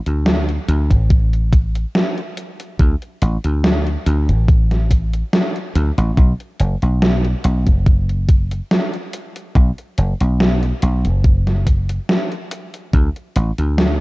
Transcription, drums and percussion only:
0.06 closed hi-hat medium
0.26 snare loud
0.26 closed hi-hat medium
0.49 closed hi-hat soft
0.69 closed hi-hat loud
0.91 kick medium
0.91 closed hi-hat medium
1.10 kick loud
1.10 closed hi-hat medium
1.33 closed hi-hat soft
1.53 kick loud
1.53 closed hi-hat medium
1.75 closed hi-hat medium
1.95 snare loud
1.95 closed hi-hat medium
2.18 closed hi-hat soft
2.37 closed hi-hat loud
2.60 closed hi-hat medium
2.79 kick loud
2.79 closed hi-hat medium
3.02 closed hi-hat soft
3.22 closed hi-hat medium
3.44 closed hi-hat medium
3.64 snare loud
3.64 closed hi-hat medium
3.87 closed hi-hat soft
4.06 closed hi-hat medium
4.29 closed hi-hat medium
4.48 kick loud
4.48 closed hi-hat medium
4.71 snare soft
4.71 closed hi-hat soft
4.91 kick medium
4.91 closed hi-hat medium
5.13 closed hi-hat soft
5.33 snare loud
5.33 closed hi-hat medium
5.56 closed hi-hat soft
5.75 closed hi-hat medium
5.98 closed hi-hat medium
6.17 kick loud
6.17 closed hi-hat medium
6.40 closed hi-hat soft
6.60 closed hi-hat medium
6.82 closed hi-hat medium
7.02 snare loud
7.02 closed hi-hat soft
7.25 closed hi-hat soft
7.44 closed hi-hat medium
7.67 kick medium
7.67 closed hi-hat medium
7.86 kick loud
7.86 closed hi-hat soft
8.09 closed hi-hat soft
8.29 kick loud
8.29 closed hi-hat medium
8.51 closed hi-hat medium
8.71 snare loud
8.71 closed hi-hat soft
8.94 closed hi-hat soft
9.13 closed hi-hat medium
9.36 closed hi-hat medium
9.55 kick loud
9.55 closed hi-hat soft
9.78 closed hi-hat soft
9.98 closed hi-hat medium
10.21 closed hi-hat medium
10.40 snare loud
10.40 closed hi-hat soft
10.63 closed hi-hat soft
10.82 closed hi-hat medium
11.05 closed hi-hat medium
11.24 kick loud
11.24 closed hi-hat soft
11.47 snare soft
11.47 closed hi-hat soft
11.67 kick medium
11.67 closed hi-hat medium
11.89 closed hi-hat soft
12.09 snare loud
12.09 closed hi-hat soft
12.32 closed hi-hat soft
12.51 closed hi-hat medium
12.74 closed hi-hat medium
12.93 kick loud
12.93 closed hi-hat medium
13.16 closed hi-hat soft
13.36 closed hi-hat medium
13.58 closed hi-hat medium
13.78 snare loud
13.78 closed hi-hat medium

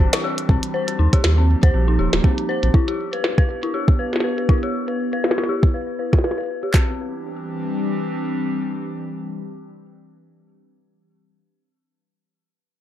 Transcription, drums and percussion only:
0.13 snare loud
0.13 closed hi-hat medium
0.38 closed hi-hat medium
0.49 kick loud
0.63 closed hi-hat medium
0.88 closed hi-hat medium
1.13 kick loud
1.13 closed hi-hat medium
1.24 snare loud
1.63 kick loud
1.63 closed hi-hat medium
2.13 snare loud
2.13 closed hi-hat medium
2.24 kick loud
2.38 closed hi-hat soft
2.63 closed hi-hat medium
2.74 kick loud
2.88 closed hi-hat medium
3.13 closed hi-hat medium
3.24 snare loud
3.38 kick loud
3.63 closed hi-hat medium
3.88 kick loud
4.13 snare medium
4.13 closed hi-hat medium
4.16 snare medium
4.20 snare medium
4.38 closed hi-hat soft
4.49 kick loud
4.63 closed hi-hat medium
4.88 closed hi-hat soft
5.13 closed hi-hat medium
5.24 snare loud
5.31 snare medium
5.38 snare medium
5.44 snare medium
5.63 kick loud
5.63 closed hi-hat medium
6.13 kick loud
6.13 snare loud
6.19 snare medium
6.24 snare medium
6.31 snare medium
6.38 closed hi-hat soft
6.41 closed hi-hat soft
6.44 closed hi-hat soft
6.46 closed hi-hat soft
6.63 closed hi-hat medium
6.74 kick medium
6.74 snare medium
6.74 clap medium

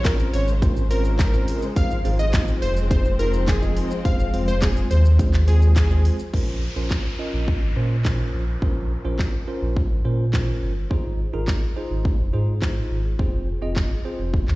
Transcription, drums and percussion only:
0.05 kick loud
0.05 snare medium
0.05 clap loud
0.05 clap medium
0.05 closed hi-hat medium
0.05 shaker medium
0.19 shaker medium
0.34 open hi-hat medium
0.34 shaker medium
0.48 shaker medium
0.62 kick loud
0.62 closed hi-hat medium
0.62 shaker medium
0.76 shaker medium
0.91 open hi-hat medium
0.91 shaker medium
1.05 shaker medium
1.19 kick loud
1.19 snare medium
1.19 clap loud
1.19 clap medium
1.19 closed hi-hat medium
1.19 shaker medium
1.34 shaker soft
1.48 open hi-hat medium
1.48 shaker medium
1.62 shaker medium
1.76 kick loud
1.76 closed hi-hat medium
1.76 shaker medium
1.91 shaker soft
2.05 open hi-hat medium
2.05 shaker soft
2.19 shaker medium
2.33 kick loud
2.33 snare medium
2.33 clap loud
2.33 clap medium
2.33 closed hi-hat medium
2.33 shaker medium
2.48 shaker medium
2.62 open hi-hat medium
2.62 shaker medium
2.77 shaker medium
2.91 kick loud
2.91 closed hi-hat medium
2.91 shaker medium
3.05 shaker medium
3.19 open hi-hat medium
3.19 shaker medium
3.33 shaker medium
3.48 kick loud
3.48 snare loud
3.48 clap loud
3.48 clap medium
3.48 closed hi-hat medium
3.48 shaker medium
3.62 shaker soft
3.77 open hi-hat medium
3.77 shaker medium
3.91 shaker medium
4.05 kick loud
4.05 closed hi-hat medium
4.05 shaker medium
4.19 shaker medium
4.34 open hi-hat medium
4.34 shaker soft
4.48 shaker medium
4.62 kick loud
4.62 snare medium
4.62 clap loud
4.62 clap medium
4.62 closed hi-hat medium
4.62 shaker medium
4.77 shaker medium
4.91 open hi-hat medium
4.91 shaker medium
5.05 shaker medium
5.19 kick loud
5.19 closed hi-hat medium
5.19 shaker medium
5.34 clap medium
5.34 shaker medium
5.48 open hi-hat medium
5.48 shaker medium
5.62 shaker medium
5.76 kick loud
5.76 snare medium
5.76 clap loud
5.76 closed hi-hat medium
5.76 shaker medium
5.91 shaker soft
6.05 open hi-hat medium
6.05 shaker medium
6.19 shaker medium
6.34 kick loud
6.34 crash medium
6.91 kick loud
6.91 snare medium
6.91 clap loud
7.48 kick loud
8.05 kick loud
8.05 snare medium
8.05 clap loud
8.62 kick loud
9.19 kick loud
9.19 snare medium
9.19 clap loud
9.77 kick loud
10.33 kick loud
10.33 snare medium
10.33 clap loud
10.91 kick loud
11.48 kick loud
11.48 snare medium
11.48 clap loud
12.05 kick loud
12.62 kick loud
12.62 snare medium
12.62 clap loud
13.19 kick loud
13.76 kick loud
13.76 snare medium
13.76 clap loud
14.34 kick loud
14.48 clap medium

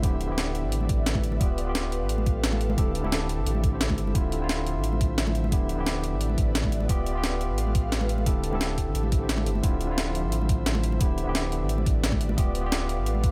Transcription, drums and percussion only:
0.03 kick loud
0.03 closed hi-hat medium
0.21 closed hi-hat medium
0.38 snare loud
0.38 closed hi-hat medium
0.55 closed hi-hat medium
0.72 closed hi-hat medium
0.81 high conga medium
0.89 kick loud
0.89 closed hi-hat medium
1.06 snare loud
1.06 closed hi-hat medium
1.15 kick medium
1.15 high conga medium
1.24 closed hi-hat medium
1.32 high conga medium
1.41 kick loud
1.41 closed hi-hat medium
1.58 closed hi-hat medium
1.75 snare loud
1.75 closed hi-hat medium
1.92 closed hi-hat medium
2.09 closed hi-hat medium
2.18 high conga medium
2.26 kick loud
2.26 closed hi-hat medium
2.44 snare loud
2.44 closed hi-hat medium
2.53 high conga medium
2.61 closed hi-hat medium
2.70 high conga loud
2.78 kick loud
2.78 closed hi-hat medium
2.95 closed hi-hat medium
3.04 high conga medium
3.12 snare loud
3.12 closed hi-hat medium
3.29 closed hi-hat medium
3.46 closed hi-hat medium
3.55 high conga medium
3.64 kick loud
3.64 closed hi-hat medium
3.81 snare loud
3.81 closed hi-hat medium
3.90 kick medium
3.90 high conga loud
3.98 closed hi-hat medium
4.07 high conga medium
4.15 kick loud
4.15 closed hi-hat medium
4.32 closed hi-hat medium
4.49 snare loud
4.49 closed hi-hat medium
4.67 closed hi-hat medium
4.84 closed hi-hat medium
4.93 high conga medium
5.01 kick loud
5.01 closed hi-hat medium
5.18 snare loud
5.18 closed hi-hat medium
5.27 high conga medium
5.35 closed hi-hat medium
5.44 high conga medium
5.52 kick loud
5.52 closed hi-hat medium
5.69 closed hi-hat medium
5.87 snare loud
5.87 closed hi-hat medium
6.04 closed hi-hat medium
6.21 closed hi-hat medium
6.30 high conga medium
6.38 kick loud
6.38 closed hi-hat medium
6.55 snare loud
6.55 closed hi-hat medium
6.64 kick medium
6.64 high conga medium
6.72 closed hi-hat medium
6.80 high conga medium
6.89 kick loud
6.89 closed hi-hat loud
7.06 closed hi-hat medium
7.24 snare loud
7.24 closed hi-hat medium
7.41 closed hi-hat medium
7.58 closed hi-hat medium
7.67 high conga medium
7.75 kick loud
7.75 closed hi-hat medium
7.92 snare loud
7.92 closed hi-hat medium
8.01 high conga medium
8.09 closed hi-hat medium
8.18 high conga medium
8.26 kick loud
8.26 closed hi-hat medium
8.44 closed hi-hat medium
8.53 high conga medium
8.61 snare loud
8.61 closed hi-hat loud
8.78 kick medium
8.78 closed hi-hat medium
8.95 closed hi-hat medium
9.03 high conga medium
9.12 kick loud
9.12 closed hi-hat medium
9.29 snare loud
9.29 closed hi-hat loud
9.38 high conga medium
9.46 closed hi-hat medium
9.55 high conga medium
9.64 kick loud
9.64 closed hi-hat medium
9.81 closed hi-hat medium
9.98 snare loud
9.98 closed hi-hat medium
10.15 closed hi-hat medium
10.32 closed hi-hat medium
10.41 high conga medium
10.49 kick loud
10.49 closed hi-hat medium
10.66 snare loud
10.66 closed hi-hat medium
10.75 high conga medium
10.84 closed hi-hat medium
10.92 high conga medium
11.01 kick loud
11.01 closed hi-hat medium
11.18 closed hi-hat medium
11.35 snare loud
11.35 closed hi-hat medium
11.52 closed hi-hat medium
11.69 closed hi-hat medium
11.78 high conga medium
11.86 kick loud
11.86 closed hi-hat medium
12.04 snare loud
12.04 closed hi-hat medium
12.12 kick medium
12.12 high conga medium
12.21 closed hi-hat medium
12.29 high conga medium
12.38 kick loud
12.38 closed hi-hat medium
12.55 closed hi-hat medium
12.72 snare loud
12.72 closed hi-hat medium
12.89 closed hi-hat medium
13.06 closed hi-hat medium
13.15 high conga medium
13.24 kick loud
13.24 closed hi-hat medium

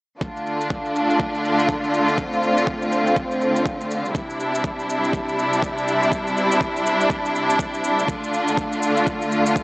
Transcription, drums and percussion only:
0.21 kick loud
0.21 shaker medium
0.37 shaker soft
0.46 shaker soft
0.61 shaker medium
0.70 kick loud
0.70 shaker soft
0.85 shaker soft
0.95 shaker medium
1.10 shaker soft
1.20 kick loud
1.20 shaker soft
1.35 shaker soft
1.45 shaker soft
1.59 shaker medium
1.69 kick loud
1.69 shaker medium
1.84 shaker soft
1.94 shaker medium
2.08 shaker soft
2.18 kick loud
2.18 shaker medium
2.33 shaker soft
2.43 shaker soft
2.57 shaker medium
2.67 kick loud
2.67 shaker soft
2.82 shaker soft
2.92 shaker medium
3.07 shaker soft
3.16 kick loud
3.16 shaker soft
3.31 shaker soft
3.41 shaker soft
3.56 shaker medium
3.66 kick loud
3.66 shaker medium
3.81 shaker soft
3.91 shaker medium
4.05 shaker soft
4.15 kick loud
4.15 shaker medium
4.30 shaker soft
4.40 shaker medium
4.55 shaker medium
4.64 kick loud
4.64 shaker soft
4.79 shaker soft
4.90 shaker medium
5.04 shaker medium
5.13 kick loud
5.13 shaker medium
5.29 shaker soft
5.39 shaker soft
5.53 shaker medium
5.63 kick loud
5.63 shaker medium
5.78 shaker soft
5.88 shaker medium
6.03 shaker soft
6.12 kick loud
6.12 shaker medium
6.27 shaker soft
6.37 shaker soft
6.52 shaker medium
6.61 kick loud
6.61 shaker soft
6.76 shaker soft
6.86 shaker medium
7.01 shaker soft
7.10 kick loud
7.10 shaker medium
7.25 shaker soft
7.35 shaker soft
7.50 shaker medium
7.59 kick loud
7.59 shaker medium
7.74 shaker soft
7.84 shaker medium
7.99 shaker soft
8.08 kick loud
8.08 shaker medium
8.24 shaker soft
8.34 shaker soft
8.48 shaker medium
8.57 kick loud
8.57 shaker soft
8.72 shaker soft
8.82 shaker medium
8.97 shaker soft
9.07 kick loud
9.07 shaker soft
9.22 shaker soft
9.32 shaker soft
9.46 shaker medium
9.56 kick loud
9.56 shaker medium

